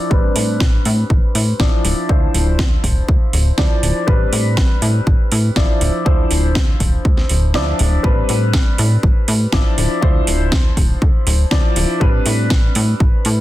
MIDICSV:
0, 0, Header, 1, 4, 480
1, 0, Start_track
1, 0, Key_signature, 0, "minor"
1, 0, Tempo, 495868
1, 106, Time_signature, 4, 2, 24, 8
1, 12977, End_track
2, 0, Start_track
2, 0, Title_t, "Grand piano"
2, 0, Program_c, 0, 0
2, 99, Note_on_c, 0, 55, 83
2, 104, Note_on_c, 0, 60, 78
2, 109, Note_on_c, 0, 62, 76
2, 115, Note_on_c, 0, 71, 93
2, 1515, Note_off_c, 0, 55, 0
2, 1518, Note_off_c, 0, 60, 0
2, 1520, Note_off_c, 0, 62, 0
2, 1523, Note_off_c, 0, 71, 0
2, 1542, Note_on_c, 0, 53, 89
2, 1545, Note_on_c, 0, 62, 83
2, 1547, Note_on_c, 0, 64, 79
2, 1550, Note_on_c, 0, 74, 97
2, 1997, Note_off_c, 0, 53, 0
2, 1998, Note_off_c, 0, 62, 0
2, 1999, Note_off_c, 0, 64, 0
2, 2000, Note_off_c, 0, 74, 0
2, 2021, Note_on_c, 0, 53, 79
2, 2026, Note_on_c, 0, 62, 80
2, 2032, Note_on_c, 0, 64, 80
2, 2036, Note_on_c, 0, 72, 95
2, 3436, Note_off_c, 0, 53, 0
2, 3439, Note_off_c, 0, 62, 0
2, 3441, Note_off_c, 0, 64, 0
2, 3443, Note_off_c, 0, 72, 0
2, 3464, Note_on_c, 0, 53, 89
2, 3467, Note_on_c, 0, 62, 78
2, 3468, Note_on_c, 0, 64, 80
2, 3471, Note_on_c, 0, 74, 98
2, 3917, Note_off_c, 0, 53, 0
2, 3919, Note_off_c, 0, 62, 0
2, 3920, Note_off_c, 0, 64, 0
2, 3921, Note_off_c, 0, 74, 0
2, 3937, Note_on_c, 0, 55, 85
2, 3943, Note_on_c, 0, 60, 81
2, 3947, Note_on_c, 0, 62, 78
2, 3953, Note_on_c, 0, 71, 99
2, 5354, Note_off_c, 0, 55, 0
2, 5357, Note_off_c, 0, 60, 0
2, 5359, Note_off_c, 0, 62, 0
2, 5362, Note_off_c, 0, 71, 0
2, 5383, Note_on_c, 0, 53, 88
2, 5385, Note_on_c, 0, 62, 80
2, 5386, Note_on_c, 0, 64, 85
2, 5390, Note_on_c, 0, 74, 93
2, 5837, Note_off_c, 0, 53, 0
2, 5838, Note_off_c, 0, 62, 0
2, 5839, Note_off_c, 0, 64, 0
2, 5841, Note_off_c, 0, 74, 0
2, 5858, Note_on_c, 0, 53, 88
2, 5862, Note_on_c, 0, 62, 76
2, 5867, Note_on_c, 0, 64, 81
2, 5872, Note_on_c, 0, 72, 91
2, 7274, Note_off_c, 0, 53, 0
2, 7276, Note_off_c, 0, 62, 0
2, 7279, Note_off_c, 0, 64, 0
2, 7282, Note_off_c, 0, 72, 0
2, 7301, Note_on_c, 0, 53, 89
2, 7305, Note_on_c, 0, 62, 84
2, 7306, Note_on_c, 0, 64, 81
2, 7309, Note_on_c, 0, 74, 92
2, 7756, Note_off_c, 0, 53, 0
2, 7758, Note_off_c, 0, 62, 0
2, 7759, Note_off_c, 0, 64, 0
2, 7760, Note_off_c, 0, 74, 0
2, 7773, Note_on_c, 0, 55, 86
2, 7779, Note_on_c, 0, 60, 82
2, 7782, Note_on_c, 0, 62, 76
2, 7790, Note_on_c, 0, 71, 94
2, 9192, Note_off_c, 0, 55, 0
2, 9195, Note_off_c, 0, 60, 0
2, 9197, Note_off_c, 0, 62, 0
2, 9200, Note_off_c, 0, 71, 0
2, 9220, Note_on_c, 0, 53, 88
2, 9222, Note_on_c, 0, 62, 80
2, 9223, Note_on_c, 0, 64, 83
2, 9227, Note_on_c, 0, 74, 99
2, 9675, Note_off_c, 0, 53, 0
2, 9676, Note_off_c, 0, 62, 0
2, 9677, Note_off_c, 0, 64, 0
2, 9679, Note_off_c, 0, 74, 0
2, 9692, Note_on_c, 0, 53, 83
2, 9697, Note_on_c, 0, 62, 78
2, 9702, Note_on_c, 0, 64, 77
2, 9708, Note_on_c, 0, 72, 94
2, 11111, Note_off_c, 0, 53, 0
2, 11114, Note_off_c, 0, 62, 0
2, 11116, Note_off_c, 0, 64, 0
2, 11119, Note_off_c, 0, 72, 0
2, 11140, Note_on_c, 0, 53, 94
2, 11143, Note_on_c, 0, 62, 81
2, 11146, Note_on_c, 0, 64, 82
2, 11148, Note_on_c, 0, 74, 100
2, 11596, Note_off_c, 0, 53, 0
2, 11597, Note_off_c, 0, 62, 0
2, 11598, Note_off_c, 0, 64, 0
2, 11600, Note_off_c, 0, 74, 0
2, 11618, Note_on_c, 0, 55, 81
2, 11622, Note_on_c, 0, 60, 76
2, 11629, Note_on_c, 0, 62, 74
2, 11634, Note_on_c, 0, 71, 97
2, 12977, Note_off_c, 0, 55, 0
2, 12977, Note_off_c, 0, 60, 0
2, 12977, Note_off_c, 0, 62, 0
2, 12977, Note_off_c, 0, 71, 0
2, 12977, End_track
3, 0, Start_track
3, 0, Title_t, "Analog synth bass"
3, 0, Program_c, 1, 38
3, 107, Note_on_c, 1, 33, 87
3, 289, Note_off_c, 1, 33, 0
3, 344, Note_on_c, 1, 45, 81
3, 587, Note_on_c, 1, 33, 91
3, 601, Note_off_c, 1, 45, 0
3, 769, Note_off_c, 1, 33, 0
3, 827, Note_on_c, 1, 45, 106
3, 1009, Note_off_c, 1, 45, 0
3, 1067, Note_on_c, 1, 33, 80
3, 1159, Note_off_c, 1, 33, 0
3, 1306, Note_on_c, 1, 45, 99
3, 1488, Note_off_c, 1, 45, 0
3, 1546, Note_on_c, 1, 33, 83
3, 1639, Note_off_c, 1, 33, 0
3, 1787, Note_on_c, 1, 26, 86
3, 1880, Note_off_c, 1, 26, 0
3, 2026, Note_on_c, 1, 38, 96
3, 2208, Note_off_c, 1, 38, 0
3, 2265, Note_on_c, 1, 26, 84
3, 2507, Note_on_c, 1, 38, 89
3, 2521, Note_off_c, 1, 26, 0
3, 2689, Note_off_c, 1, 38, 0
3, 2747, Note_on_c, 1, 26, 101
3, 2929, Note_off_c, 1, 26, 0
3, 2988, Note_on_c, 1, 38, 85
3, 3080, Note_off_c, 1, 38, 0
3, 3226, Note_on_c, 1, 26, 99
3, 3408, Note_off_c, 1, 26, 0
3, 3467, Note_on_c, 1, 38, 85
3, 3560, Note_off_c, 1, 38, 0
3, 3706, Note_on_c, 1, 26, 89
3, 3799, Note_off_c, 1, 26, 0
3, 3946, Note_on_c, 1, 33, 96
3, 4128, Note_off_c, 1, 33, 0
3, 4187, Note_on_c, 1, 45, 85
3, 4426, Note_on_c, 1, 33, 86
3, 4441, Note_off_c, 1, 45, 0
3, 4608, Note_off_c, 1, 33, 0
3, 4665, Note_on_c, 1, 45, 103
3, 4848, Note_off_c, 1, 45, 0
3, 4907, Note_on_c, 1, 33, 77
3, 4999, Note_off_c, 1, 33, 0
3, 5148, Note_on_c, 1, 45, 101
3, 5329, Note_off_c, 1, 45, 0
3, 5389, Note_on_c, 1, 33, 83
3, 5481, Note_off_c, 1, 33, 0
3, 5625, Note_on_c, 1, 26, 86
3, 5719, Note_off_c, 1, 26, 0
3, 5867, Note_on_c, 1, 38, 92
3, 6049, Note_off_c, 1, 38, 0
3, 6107, Note_on_c, 1, 26, 80
3, 6347, Note_on_c, 1, 38, 90
3, 6361, Note_off_c, 1, 26, 0
3, 6528, Note_off_c, 1, 38, 0
3, 6586, Note_on_c, 1, 26, 101
3, 6768, Note_off_c, 1, 26, 0
3, 6826, Note_on_c, 1, 38, 89
3, 7008, Note_off_c, 1, 38, 0
3, 7066, Note_on_c, 1, 26, 93
3, 7306, Note_on_c, 1, 38, 97
3, 7320, Note_off_c, 1, 26, 0
3, 7488, Note_off_c, 1, 38, 0
3, 7550, Note_on_c, 1, 26, 106
3, 7730, Note_off_c, 1, 26, 0
3, 7784, Note_on_c, 1, 33, 92
3, 7967, Note_off_c, 1, 33, 0
3, 8028, Note_on_c, 1, 45, 82
3, 8265, Note_on_c, 1, 33, 87
3, 8279, Note_off_c, 1, 45, 0
3, 8448, Note_off_c, 1, 33, 0
3, 8507, Note_on_c, 1, 45, 99
3, 8689, Note_off_c, 1, 45, 0
3, 8743, Note_on_c, 1, 33, 80
3, 8838, Note_off_c, 1, 33, 0
3, 8984, Note_on_c, 1, 45, 103
3, 9167, Note_off_c, 1, 45, 0
3, 9224, Note_on_c, 1, 33, 87
3, 9318, Note_off_c, 1, 33, 0
3, 9466, Note_on_c, 1, 26, 89
3, 9559, Note_off_c, 1, 26, 0
3, 9705, Note_on_c, 1, 38, 90
3, 9888, Note_off_c, 1, 38, 0
3, 9946, Note_on_c, 1, 26, 82
3, 10186, Note_on_c, 1, 38, 88
3, 10201, Note_off_c, 1, 26, 0
3, 10368, Note_off_c, 1, 38, 0
3, 10426, Note_on_c, 1, 26, 95
3, 10608, Note_off_c, 1, 26, 0
3, 10666, Note_on_c, 1, 38, 82
3, 10759, Note_off_c, 1, 38, 0
3, 10905, Note_on_c, 1, 26, 104
3, 11088, Note_off_c, 1, 26, 0
3, 11147, Note_on_c, 1, 38, 87
3, 11240, Note_off_c, 1, 38, 0
3, 11387, Note_on_c, 1, 26, 95
3, 11480, Note_off_c, 1, 26, 0
3, 11628, Note_on_c, 1, 33, 89
3, 11809, Note_off_c, 1, 33, 0
3, 11868, Note_on_c, 1, 45, 83
3, 12107, Note_on_c, 1, 33, 91
3, 12122, Note_off_c, 1, 45, 0
3, 12289, Note_off_c, 1, 33, 0
3, 12349, Note_on_c, 1, 45, 101
3, 12530, Note_off_c, 1, 45, 0
3, 12587, Note_on_c, 1, 33, 81
3, 12680, Note_off_c, 1, 33, 0
3, 12830, Note_on_c, 1, 45, 97
3, 12977, Note_off_c, 1, 45, 0
3, 12977, End_track
4, 0, Start_track
4, 0, Title_t, "Drums"
4, 106, Note_on_c, 9, 36, 111
4, 203, Note_off_c, 9, 36, 0
4, 345, Note_on_c, 9, 46, 106
4, 442, Note_off_c, 9, 46, 0
4, 584, Note_on_c, 9, 38, 107
4, 586, Note_on_c, 9, 36, 115
4, 681, Note_off_c, 9, 38, 0
4, 682, Note_off_c, 9, 36, 0
4, 827, Note_on_c, 9, 46, 106
4, 924, Note_off_c, 9, 46, 0
4, 1066, Note_on_c, 9, 36, 109
4, 1162, Note_off_c, 9, 36, 0
4, 1307, Note_on_c, 9, 46, 101
4, 1404, Note_off_c, 9, 46, 0
4, 1546, Note_on_c, 9, 36, 111
4, 1546, Note_on_c, 9, 38, 114
4, 1642, Note_off_c, 9, 38, 0
4, 1643, Note_off_c, 9, 36, 0
4, 1787, Note_on_c, 9, 46, 101
4, 1884, Note_off_c, 9, 46, 0
4, 2026, Note_on_c, 9, 36, 111
4, 2123, Note_off_c, 9, 36, 0
4, 2269, Note_on_c, 9, 46, 103
4, 2366, Note_off_c, 9, 46, 0
4, 2506, Note_on_c, 9, 38, 104
4, 2507, Note_on_c, 9, 36, 114
4, 2602, Note_off_c, 9, 38, 0
4, 2604, Note_off_c, 9, 36, 0
4, 2746, Note_on_c, 9, 36, 55
4, 2748, Note_on_c, 9, 46, 96
4, 2843, Note_off_c, 9, 36, 0
4, 2845, Note_off_c, 9, 46, 0
4, 2987, Note_on_c, 9, 36, 113
4, 3083, Note_off_c, 9, 36, 0
4, 3227, Note_on_c, 9, 46, 100
4, 3323, Note_off_c, 9, 46, 0
4, 3463, Note_on_c, 9, 38, 109
4, 3466, Note_on_c, 9, 36, 104
4, 3560, Note_off_c, 9, 38, 0
4, 3563, Note_off_c, 9, 36, 0
4, 3708, Note_on_c, 9, 46, 105
4, 3805, Note_off_c, 9, 46, 0
4, 3947, Note_on_c, 9, 36, 112
4, 4043, Note_off_c, 9, 36, 0
4, 4188, Note_on_c, 9, 46, 105
4, 4284, Note_off_c, 9, 46, 0
4, 4424, Note_on_c, 9, 38, 109
4, 4426, Note_on_c, 9, 36, 104
4, 4521, Note_off_c, 9, 38, 0
4, 4523, Note_off_c, 9, 36, 0
4, 4666, Note_on_c, 9, 46, 99
4, 4763, Note_off_c, 9, 46, 0
4, 4906, Note_on_c, 9, 36, 109
4, 5003, Note_off_c, 9, 36, 0
4, 5146, Note_on_c, 9, 46, 99
4, 5243, Note_off_c, 9, 46, 0
4, 5383, Note_on_c, 9, 38, 108
4, 5387, Note_on_c, 9, 36, 108
4, 5479, Note_off_c, 9, 38, 0
4, 5484, Note_off_c, 9, 36, 0
4, 5626, Note_on_c, 9, 46, 101
4, 5722, Note_off_c, 9, 46, 0
4, 5866, Note_on_c, 9, 36, 112
4, 5963, Note_off_c, 9, 36, 0
4, 6104, Note_on_c, 9, 46, 102
4, 6201, Note_off_c, 9, 46, 0
4, 6343, Note_on_c, 9, 38, 116
4, 6346, Note_on_c, 9, 36, 107
4, 6440, Note_off_c, 9, 38, 0
4, 6443, Note_off_c, 9, 36, 0
4, 6585, Note_on_c, 9, 46, 104
4, 6586, Note_on_c, 9, 36, 59
4, 6682, Note_off_c, 9, 36, 0
4, 6682, Note_off_c, 9, 46, 0
4, 6825, Note_on_c, 9, 36, 111
4, 6921, Note_off_c, 9, 36, 0
4, 6944, Note_on_c, 9, 38, 34
4, 7041, Note_off_c, 9, 38, 0
4, 7061, Note_on_c, 9, 46, 98
4, 7158, Note_off_c, 9, 46, 0
4, 7300, Note_on_c, 9, 38, 120
4, 7397, Note_off_c, 9, 38, 0
4, 7543, Note_on_c, 9, 46, 98
4, 7639, Note_off_c, 9, 46, 0
4, 7783, Note_on_c, 9, 36, 120
4, 7880, Note_off_c, 9, 36, 0
4, 8023, Note_on_c, 9, 46, 113
4, 8120, Note_off_c, 9, 46, 0
4, 8262, Note_on_c, 9, 38, 120
4, 8264, Note_on_c, 9, 36, 109
4, 8358, Note_off_c, 9, 38, 0
4, 8361, Note_off_c, 9, 36, 0
4, 8503, Note_on_c, 9, 46, 102
4, 8600, Note_off_c, 9, 46, 0
4, 8744, Note_on_c, 9, 36, 116
4, 8841, Note_off_c, 9, 36, 0
4, 8982, Note_on_c, 9, 46, 108
4, 9079, Note_off_c, 9, 46, 0
4, 9220, Note_on_c, 9, 38, 119
4, 9224, Note_on_c, 9, 36, 116
4, 9317, Note_off_c, 9, 38, 0
4, 9321, Note_off_c, 9, 36, 0
4, 9466, Note_on_c, 9, 46, 110
4, 9563, Note_off_c, 9, 46, 0
4, 9704, Note_on_c, 9, 36, 114
4, 9801, Note_off_c, 9, 36, 0
4, 9944, Note_on_c, 9, 46, 114
4, 10041, Note_off_c, 9, 46, 0
4, 10182, Note_on_c, 9, 38, 127
4, 10186, Note_on_c, 9, 36, 118
4, 10279, Note_off_c, 9, 38, 0
4, 10282, Note_off_c, 9, 36, 0
4, 10426, Note_on_c, 9, 36, 63
4, 10426, Note_on_c, 9, 46, 111
4, 10522, Note_off_c, 9, 36, 0
4, 10523, Note_off_c, 9, 46, 0
4, 10666, Note_on_c, 9, 36, 124
4, 10763, Note_off_c, 9, 36, 0
4, 10906, Note_on_c, 9, 46, 107
4, 11003, Note_off_c, 9, 46, 0
4, 11143, Note_on_c, 9, 38, 114
4, 11147, Note_on_c, 9, 36, 120
4, 11240, Note_off_c, 9, 38, 0
4, 11244, Note_off_c, 9, 36, 0
4, 11385, Note_on_c, 9, 46, 111
4, 11481, Note_off_c, 9, 46, 0
4, 11627, Note_on_c, 9, 36, 123
4, 11724, Note_off_c, 9, 36, 0
4, 11864, Note_on_c, 9, 46, 115
4, 11961, Note_off_c, 9, 46, 0
4, 12103, Note_on_c, 9, 38, 121
4, 12107, Note_on_c, 9, 36, 126
4, 12200, Note_off_c, 9, 38, 0
4, 12204, Note_off_c, 9, 36, 0
4, 12344, Note_on_c, 9, 46, 111
4, 12441, Note_off_c, 9, 46, 0
4, 12587, Note_on_c, 9, 36, 125
4, 12684, Note_off_c, 9, 36, 0
4, 12825, Note_on_c, 9, 46, 113
4, 12921, Note_off_c, 9, 46, 0
4, 12977, End_track
0, 0, End_of_file